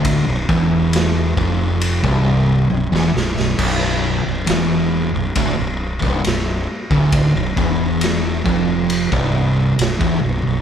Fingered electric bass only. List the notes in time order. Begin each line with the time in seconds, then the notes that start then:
Already playing: D1
0.28 B0
0.49 E1
1.37 F1
2.04 C1
2.71 B0
2.92 E1
3.16 B0
3.38 B0
3.59 B0
4.26 B0
4.49 E1
5.14 B0
5.36 D1
5.60 B0
6.03 C1
6.25 B0
6.91 D1
7.36 B0
7.57 E1
8.46 F1
9.12 C1
9.78 B0
10.01 E1
10.23 B0
10.46 B0